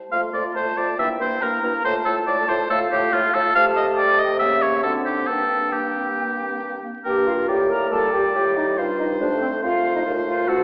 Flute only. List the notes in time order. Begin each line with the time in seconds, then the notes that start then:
0.11 C6
0.55 A5
0.98 G5
1.41 A#5
1.84 A5
2.70 F5
3.55 A5
3.98 G5
4.41 E5
4.84 F#5
5.28 G5
7.05 G5
7.27 F5
7.49 G5
7.70 A#5
7.91 A5
8.13 G5
8.36 G5
8.56 D#5
8.78 F5
8.99 D#5
9.20 D5
9.42 C5
9.63 F5
9.96 D#5
10.06 F5
10.27 F5
10.48 F#5